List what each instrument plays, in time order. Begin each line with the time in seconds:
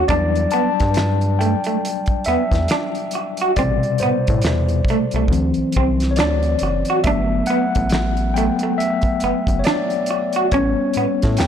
Already playing: tine electric piano D#3 A3 C#4 C#5
0.08 analog synth bass E2, tine electric piano F#3 G3 D4 D5, clean electric guitar D4, kick, closed hi-hat
0.35 closed hi-hat
0.51 clean electric guitar B3, tine electric piano A5, closed hi-hat
0.80 analog synth bass G2, kick, snare, closed hi-hat
0.94 muted clean electric guitar stroke, snare, closed hi-hat
0.98 clap
1.21 closed hi-hat
1.39 clean electric guitar A3, tine electric piano G5, closed hi-hat
1.64 clean electric guitar A3, closed hi-hat
1.85 closed hi-hat
2.06 kick, closed hi-hat
2.24 analog synth bass E2, clean electric guitar B3, tine electric piano E5, closed hi-hat
2.52 analog synth bass E2, kick, snare, closed hi-hat
2.68 clean electric guitar D4, snare, clap, closed hi-hat
2.95 closed hi-hat
3.11 closed hi-hat
3.15 muted clean electric guitar stroke
3.37 closed hi-hat
3.42 clean electric guitar F#4
3.56 analog synth bass A1, tine electric piano B2 C3 G3 D5, clean electric guitar C4, kick, closed hi-hat
3.83 closed hi-hat
3.98 analog synth bass A2, tine electric piano C5, closed hi-hat
4.03 clean electric guitar B3
4.27 analog synth bass A2, kick, closed hi-hat
4.42 analog synth bass E2, snare, closed hi-hat
4.46 muted clean electric guitar stroke, clap
4.69 closed hi-hat
4.85 kick, closed hi-hat
4.90 clean electric guitar A3
5.11 analog synth bass C2, closed hi-hat
5.16 clean electric guitar A3
5.28 analog synth bass D2, tine electric piano E3 F#3 C4, kick
5.33 closed hi-hat
5.54 analog synth bass C2, closed hi-hat
5.72 closed hi-hat
5.76 analog synth bass C2, clean electric guitar C4, kick
6.00 snare, closed hi-hat
6.11 tine electric piano C#5
6.16 analog synth bass D2, tine electric piano D5, snare, clap, closed hi-hat
6.20 clean electric guitar D4
6.43 closed hi-hat
6.59 analog synth bass F#1, closed hi-hat
6.63 muted clean electric guitar stroke
6.85 closed hi-hat
6.90 clean electric guitar F#4
7.04 analog synth bass G1, tine electric piano F#3 A3 B3 E5, clean electric guitar D4, kick, closed hi-hat
7.46 tine electric piano F#5, closed hi-hat
7.50 clean electric guitar B3
7.75 analog synth bass A1, kick, closed hi-hat
7.89 snare, closed hi-hat
7.94 muted clean electric guitar stroke, clap
8.17 closed hi-hat
8.34 tine electric piano F#3 A3 B3 G5, clean electric guitar A3, closed hi-hat
8.59 closed hi-hat
8.63 clean electric guitar A3
8.78 tine electric piano E5, closed hi-hat
9.01 kick, closed hi-hat
9.20 analog synth bass F#1, clean electric guitar B3, closed hi-hat
9.47 analog synth bass F#1, kick, closed hi-hat
9.59 tine electric piano C#5
9.64 clean electric guitar D4, tine electric piano D5, snare, clap, closed hi-hat
9.90 closed hi-hat
10.06 closed hi-hat
10.11 muted clean electric guitar stroke
10.33 clean electric guitar F#4, closed hi-hat
10.52 analog synth bass A1, tine electric piano G3 B3 C#4 C#5, clean electric guitar C#4, kick, closed hi-hat
10.93 analog synth bass A2, clean electric guitar B3, closed hi-hat
11.22 analog synth bass A2, kick, snare, closed hi-hat
11.37 analog synth bass E2, tine electric piano G5, muted clean electric guitar stroke, snare, closed hi-hat
11.41 clap